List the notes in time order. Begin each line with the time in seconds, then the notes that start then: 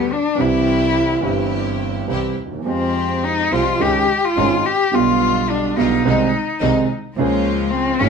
Already playing: B3
0.12 D4
0.35 C2 C3 E3 G3 C4 E4 G4
0.39 E4 G4
1.20 G1 G2 E3 G3 C4
1.25 C4 E4 G4
2.07 C2 C3 E3 G3 C4 E4 G4
2.37 D#2
2.45 D2
2.52 D#2
2.59 E2
2.64 F2 F3 G#3 C4 F4 G4
2.68 G4
3.24 D#4
3.51 C2 C3 F3 G#3 C4 F4 G4
3.79 C#2 C#3 D#3 G#3 C#4 D#4 G4 G#4
4.24 F4
4.36 G#1 G#2 D#3 G#3 C#4 D#4 G#4
4.66 G4
4.91 B1 B2 D3 G3 B3 F4
4.95 F4
5.50 D4
5.77 B1 B2 D3 G3 B3 D#4 F4
6.05 C2 C3 D#3 G#3 C4 D#4 G#4
6.61 C2 C3 D#3 G#3 C4 D#4 G#4
7.16 C#2 C#3 F3 G#3 A#3 C#4 F4 G#4
7.70 C4
7.99 G#1 G#2 F3 A#3 C#4 F4 G#4